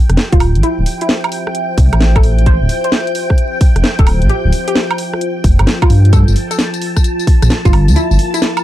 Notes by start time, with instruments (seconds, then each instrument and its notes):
Already playing: ambient pad F4 C5 E5 G5 A5, string machine G5
0.10 detuned saw bass F1, cross-stick, closed hi-hat
0.17 snare
0.32 detuned saw bass D1, synth pluck F4, kick, closed hi-hat
0.40 detuned saw bass D1, cross-stick, open hi-hat, high woodblock
0.55 detuned saw bass A1, closed hi-hat
0.63 synth pluck E4, closed hi-hat
0.78 detuned saw bass D1
0.86 open hi-hat
1.01 synth pluck E4, closed hi-hat
1.09 snare
1.24 closed hi-hat, high woodblock
1.32 open hi-hat
1.47 cross-stick
1.55 closed hi-hat
1.78 detuned saw bass C2, kick, open hi-hat
1.93 detuned saw bass A1, cross-stick, closed hi-hat, high woodblock
2.01 snare
2.16 synth pluck A4, kick, closed hi-hat, high woodblock
2.23 open hi-hat
2.38 closed hi-hat
2.46 synth pluck C5, kick, closed hi-hat
2.61 detuned saw bass D1
2.69 open hi-hat
2.84 synth pluck C5, closed hi-hat
2.92 snare
3.07 closed hi-hat
3.15 open hi-hat
3.30 kick, cross-stick
3.38 closed hi-hat
3.61 kick, open hi-hat
3.76 detuned saw bass F1, cross-stick, closed hi-hat
3.84 snare
3.99 detuned saw bass D1, synth pluck A4, kick, closed hi-hat
4.07 detuned saw bass D1, cross-stick, open hi-hat, high woodblock
4.22 detuned saw bass A1, closed hi-hat
4.29 synth pluck G4, closed hi-hat
4.45 detuned saw bass D1
4.52 open hi-hat
4.68 synth pluck G4, closed hi-hat
4.75 snare
4.91 closed hi-hat, high woodblock
4.98 open hi-hat
5.13 cross-stick
5.21 closed hi-hat
5.44 detuned saw bass F1, kick, open hi-hat
5.59 detuned saw bass G1, cross-stick, closed hi-hat, high woodblock
5.67 snare
5.82 synth pluck F4, kick, closed hi-hat, high woodblock
5.90 detuned saw bass G2, open hi-hat
6.05 closed hi-hat
6.13 synth pluck A4, string machine A5, ambient pad A5, kick, closed hi-hat, tambourine
6.25 detuned saw bass G1, ambient pad A#4, tambourine
6.36 open hi-hat
6.51 synth pluck A4, closed hi-hat, tambourine
6.59 snare, tambourine
6.74 closed hi-hat, tambourine
6.82 open hi-hat
6.97 kick, cross-stick, tambourine
7.04 closed hi-hat, tambourine
7.20 tambourine
7.27 kick, open hi-hat
7.42 detuned saw bass A#1, cross-stick, closed hi-hat, tambourine
7.50 snare, tambourine
7.65 detuned saw bass G1, synth pluck F4, kick, closed hi-hat, tambourine
7.73 detuned saw bass G1, cross-stick, open hi-hat, high woodblock
7.88 detuned saw bass D2, closed hi-hat, tambourine
7.96 synth pluck E4, closed hi-hat, tambourine
8.11 detuned saw bass G1, tambourine
8.19 open hi-hat
8.34 synth pluck E4, closed hi-hat, tambourine
8.42 snare, tambourine
8.57 closed hi-hat, tambourine, high woodblock